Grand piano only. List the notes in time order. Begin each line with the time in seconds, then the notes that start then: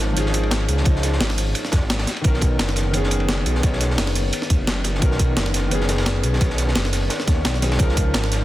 Already playing: F3 C#4 D#4 A#4 D#5
0.13 F3 C#4
0.17 D#4 G#4
0.83 F3 C#4
0.87 D#4 D#5
2.21 D#3 B3
2.26 C#4 A#4
2.91 D#3 B3
2.95 C#4 G#4
3.60 D#3 B3
3.64 C#4 C#5
4.99 D#3 B3
5.03 C#4 A#4
5.68 D#3 B3
5.72 C#4 G#4
6.38 D#3 B3
6.42 C#4 C#5
7.26 D#3 B3 C#4 C#5
7.61 D#3 B3 C#4 G#4
7.76 F3 C#4
7.81 D#4 A#4